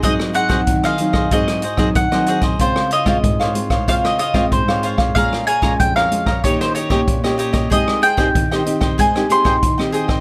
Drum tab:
HH |x-xxxxx-xxx-xxxx|x-xxxxxxxxx-x-x-|x-xxxxx-xxx-xxxx|x-xxxxxxxxx-x-x-|
SD |-r-r-r-r-r-r-r-r|-r-r-r-r-r-r-r-r|-r-r-r-r-r-r-r-r|-r-r-r-r-r-r-r-r|
BD |o--oo--oo--oo--o|o--oo--oo--oo--o|o--oo--oo--oo--o|o--oo--oo--oo--o|